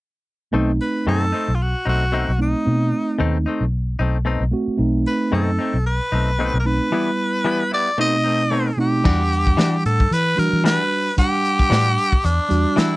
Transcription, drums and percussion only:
9.05 kick loud
9.05 crash medium
9.32 closed hi-hat medium
9.47 kick medium
9.58 snare medium
9.58 closed hi-hat medium
9.85 closed hi-hat medium
10.00 kick medium
10.12 closed hi-hat medium
10.39 closed hi-hat medium
10.65 snare medium
10.65 closed hi-hat medium
10.92 open hi-hat medium
11.18 kick medium
11.18 closed hi-hat medium
11.45 closed hi-hat medium
11.59 kick medium
11.72 snare loud
11.72 closed hi-hat medium
11.98 closed hi-hat medium
12.12 kick medium
12.24 closed hi-hat medium
12.51 closed hi-hat medium
12.77 snare medium
12.77 closed hi-hat medium

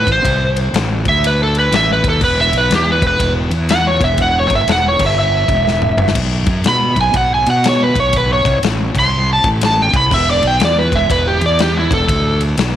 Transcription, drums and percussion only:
0.07 kick loud
0.07 ride medium
0.25 kick loud
0.25 ride medium
0.57 ride medium
0.74 snare loud
0.74 ride medium
1.05 kick loud
1.05 ride medium
1.24 ride loud
1.55 ride medium
1.72 snare loud
1.72 ride loud
2.04 kick loud
2.04 ride medium
2.21 kick loud
2.21 crash medium
2.53 ride medium
2.71 snare medium
2.71 ride loud
3.02 kick loud
3.02 ride medium
3.20 kick medium
3.20 ride loud
3.51 ride medium
3.69 snare loud
3.69 ride loud
4.01 kick loud
4.01 ride medium
4.18 kick loud
4.18 ride medium
4.50 kick medium
4.50 ride medium
4.68 snare loud
4.68 ride medium
4.99 kick loud
4.99 crash medium
5.48 kick loud
5.48 ride medium
5.67 snare medium
5.82 mid tom medium
5.98 mid tom loud
6.08 snare medium
6.15 kick loud
6.15 crash medium
6.15 ride loud
6.46 kick loud
6.46 ride medium
6.64 snare loud
6.64 ride loud
6.96 kick medium
6.96 ride medium
7.14 kick loud
7.14 ride loud
7.46 ride medium
7.64 snare loud
7.64 ride loud
7.96 kick loud
7.96 ride medium
8.13 kick loud
8.13 ride loud
8.45 kick loud
8.45 ride medium
8.63 snare loud
8.63 ride loud
8.95 kick medium
8.95 crash medium
9.44 kick loud
9.44 ride medium
9.61 snare loud
9.61 ride loud
9.94 kick loud
9.94 ride medium
10.11 kick loud
10.11 crash medium
10.43 ride medium
10.60 snare loud
10.60 ride medium
10.92 kick medium
10.92 ride medium
11.10 kick loud
11.10 ride loud
11.41 ride medium
11.59 snare loud
11.59 ride medium
11.91 kick loud
11.91 ride medium
12.08 kick loud
12.08 ride loud
12.41 ride medium
12.57 snare loud
12.57 ride medium

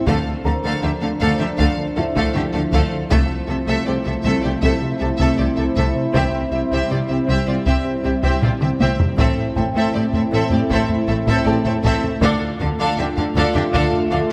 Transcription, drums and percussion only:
0.07 taiko medium
1.59 taiko medium
2.16 taiko medium
2.72 taiko medium
3.11 taiko loud
4.63 taiko medium
5.20 taiko medium
5.76 taiko medium
6.14 taiko loud
7.66 taiko medium
8.23 taiko medium
8.42 taiko low-mid medium
8.61 taiko mid medium
8.81 taiko high medium
9.00 taiko low medium
9.18 taiko medium
9.57 taiko low medium
10.13 taiko low soft
10.51 taiko low medium
10.70 taiko medium
10.89 taiko low soft
11.27 taiko medium
11.65 taiko low soft
11.84 taiko medium
12.03 taiko low soft
12.22 taiko loud
12.60 taiko low medium
13.17 taiko low soft
13.55 taiko low medium
13.74 taiko medium
13.93 taiko low soft

